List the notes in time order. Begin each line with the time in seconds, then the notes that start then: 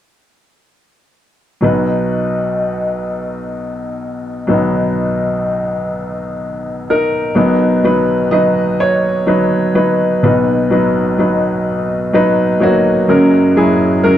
1.61 B1 B2 F#3 D#4 B4
4.47 B1 B2 F#3 B3 D#4
6.90 D#4 A#4
7.35 B1 B2 F#3 B3 D#4
7.84 F#3 D#4 B4
8.31 F#3 D#4 B4 D#5
8.80 C#5
9.27 F#3 D#4 B4
9.75 F#3 D#4 B4
10.23 B1 B2 D#4 B4
10.70 F#3 D#4 B4
11.18 F#3 D#4 B4
12.13 F#3 D#4 B4
12.60 F#3 D#4 F#4 C#5
12.65 A#3
13.08 F#1 F#2 F#3 C#4 A#4
13.56 F#3 C#4 E4 G#4
14.04 F#3 C#4 A#4